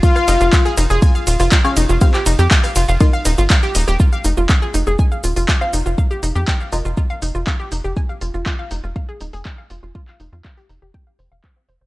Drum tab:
RD |x-x-x-x-x-x-x-x-|x-x-x-x-x-x-x-x-|----------------|----------------|
HH |--o---o---oo--o-|--o--oo---o---o-|--o---o---oo--o-|--o---o---o---o-|
SH |xxxxxxxxxxxxxxxx|xxxxxxxxxxxxxxxx|xxxxxxxxxxxxxxxx|xxxxxxxxxxxxxxxx|
CP |----x-------x---|-x--x-------x---|----x-------x---|----x-------x---|
SD |-r----r----r----|r----r----r----r|----------------|----------------|
BD |o---o---o---o---|o---o---o---o---|o---o---o---o---|o---o---o---o---|

RD |----------------|----------------|
HH |--o---o---oo--o-|--o--oo---o---o-|
SH |xxxxxxxxxxxxxxxx|x-xx--xxx-xx--x-|
CP |----x-------x---|-x--x-------x---|
SD |----------------|----------------|
BD |o---o---o---o---|o---o---o---o---|